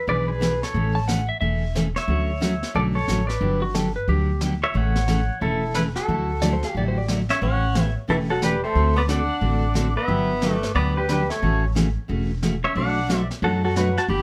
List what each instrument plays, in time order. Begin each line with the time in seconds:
0.07 upright bass B1, steel-string acoustic guitar E3 B3 D4 G#4, pedal steel guitar B4 D5, brush sweep
0.28 pedal steel guitar G#4 B4
0.40 steel-string acoustic guitar E3 B3 D4 G#4, snare, hi-hat pedal
0.63 pedal steel guitar A4 C#5, snare
0.74 upright bass A1, steel-string acoustic guitar C#3 E3 A3 C#4 A4, brush sweep
0.95 electric slide guitar A5
1.08 steel-string acoustic guitar C#3 E3 A3 C#4 A4, electric slide guitar F#5, snare, hi-hat pedal
1.29 electric slide guitar E5
1.41 upright bass E1, steel-string acoustic guitar C#3 E3 A3 C#4 A4, electric slide guitar E5, brush sweep
1.75 steel-string acoustic guitar C#3 E3 A3 C#4 A4, snare, hi-hat pedal
1.96 pedal steel guitar C#5 E5, snare
2.07 upright bass D2, steel-string acoustic guitar D3 F#3 A3 C#4 F#4, brush sweep
2.40 steel-string acoustic guitar D3 F#3 A3 C#4 F#4, snare, hi-hat pedal
2.63 snare
2.75 upright bass B1, steel-string acoustic guitar D3 F#3 A3 C#4 F#4, pedal steel guitar A4 D5, brush sweep
2.95 pedal steel guitar A4 C#5
3.08 upright bass A1, steel-string acoustic guitar D3 F#3 A3 C#4 F#4, snare, hi-hat pedal
3.27 pedal steel guitar B4 D5, snare
3.41 upright bass G1, steel-string acoustic guitar D3 F#3 B3 D4 G4, brush sweep
3.62 electric slide guitar F#4
3.74 steel-string acoustic guitar D3 F#3 B3 D4 G4, electric slide guitar A4, snare, hi-hat pedal
3.96 electric slide guitar B4
4.08 upright bass D2, steel-string acoustic guitar D3 F#3 B3 D4 G4, electric slide guitar G4, brush sweep
4.41 steel-string acoustic guitar D3 F#3 B3 D4 G4, snare, hi-hat pedal
4.63 pedal steel guitar C#5 E5
4.74 upright bass A1, steel-string acoustic guitar C#3 E3 A3 C#4 A4, pedal steel guitar C#5 F#5, brush sweep
4.96 snare
5.08 steel-string acoustic guitar C#3 E3 A3 C#4 A4, snare, hi-hat pedal
5.41 upright bass E1, steel-string acoustic guitar C#3 E3 A3 C#4 A4, pedal steel guitar E4 A4, brush sweep
5.74 steel-string acoustic guitar C#3 E3 A3 C#4 A4, pedal steel guitar E4 B4, snare, hi-hat pedal
5.96 pedal steel guitar F#4 A4, snare
6.08 upright bass D2, steel-string acoustic guitar D3 F#3 A3 E4 F#4, brush sweep
6.42 steel-string acoustic guitar D3 F#3 A3 E4 F#4, electric slide guitar D5, snare, hi-hat pedal
6.53 electric slide guitar C5
6.63 electric slide guitar F5, snare
6.71 upright bass A1, pedal steel guitar G4, brush sweep
6.76 steel-string acoustic guitar D3 F#3 A3 E4 F#4, electric slide guitar D5
6.88 electric slide guitar C5
6.98 electric slide guitar D5
7.08 steel-string acoustic guitar D3 F#3 A3 E4 F#4, snare, hi-hat pedal
7.29 tenor saxophone C#4, pedal steel guitar C#5 E5, snare
7.42 upright bass A1, steel-string acoustic guitar C#3 E3 A3 C#4 G4, tenor saxophone C#4, pedal steel guitar C#5 F#5, brush sweep
7.75 steel-string acoustic guitar C#3 E3 A3 C#4 G4, snare, hi-hat pedal
8.08 upright bass E1, steel-string acoustic guitar C#3 E3 A3 C#4 G4, tenor saxophone E3, pedal steel guitar E4 A4, brush sweep
8.30 tenor saxophone F#3, pedal steel guitar F#4 A4
8.41 steel-string acoustic guitar C#3 E3 A3 C#4 G4, tenor saxophone G3, pedal steel guitar G4 B4, snare, hi-hat pedal
8.64 tenor saxophone A3, pedal steel guitar A4 C5
8.75 upright bass D2, steel-string acoustic guitar D3 A3 C4 F#4 A4, brush sweep
8.96 tenor saxophone B3, pedal steel guitar B4 D5
9.08 steel-string acoustic guitar D3 A3 C4 F#4 A4, tenor saxophone D4, pedal steel guitar D5 F#5, snare, hi-hat pedal
9.41 upright bass A1, steel-string acoustic guitar D3 A3 C4 F#4 A4, brush sweep
9.74 steel-string acoustic guitar D3 A3 C4 F#4 A4, snare, hi-hat pedal
9.96 tenor saxophone B3, pedal steel guitar B4 E5
10.08 upright bass G1, steel-string acoustic guitar D3 F#3 B3 D4 G4, brush sweep
10.42 steel-string acoustic guitar D3 F#3 B3 D4 G4, snare, hi-hat pedal
10.51 tenor saxophone A3
10.56 pedal steel guitar D5
10.63 snare
10.74 upright bass D2, steel-string acoustic guitar D3 F#3 B3 D4 G4, tenor saxophone B3, pedal steel guitar B4 D5, brush sweep
10.96 tenor saxophone G3, pedal steel guitar G4 B4
11.09 steel-string acoustic guitar D3 F#3 B3 D4 G4, tenor saxophone G3, pedal steel guitar G4 B4, snare, hi-hat pedal
11.30 tenor saxophone A3, pedal steel guitar A4 C#5, snare
11.42 upright bass A1, steel-string acoustic guitar C#3 E3 A3 C#4 F#4, brush sweep
11.75 steel-string acoustic guitar C#3 E3 A3 C#4 F#4, snare, hi-hat pedal
12.08 upright bass E1, steel-string acoustic guitar C#3 E3 A3 C#4 F#4, brush sweep
12.42 steel-string acoustic guitar C#3 E3 A3 C#4 F#4, snare, hi-hat pedal
12.64 tenor saxophone C#4, pedal steel guitar C#5 E5
12.75 upright bass B1, steel-string acoustic guitar B2 F#3 A3 D4 F#4, tenor saxophone D4, pedal steel guitar D5 F#5, brush sweep
13.08 steel-string acoustic guitar B2 F#3 A3 D4 F#4, snare, hi-hat pedal
13.31 snare
13.42 upright bass F#2, steel-string acoustic guitar B2 F#3 A3 D4 F#4, tenor saxophone F#3, pedal steel guitar F#4 A4, brush sweep
13.64 tenor saxophone F#3, pedal steel guitar F#4 A4
13.76 steel-string acoustic guitar B2 F#3 A3 D4 F#4, tenor saxophone F#3, pedal steel guitar F#4 B4, snare, hi-hat pedal
13.97 tenor saxophone F#4, pedal steel guitar F#5 A5, snare
14.08 upright bass G1, steel-string acoustic guitar D3 G3 B3 D4 G4, tenor saxophone G4, pedal steel guitar G5 B5, brush sweep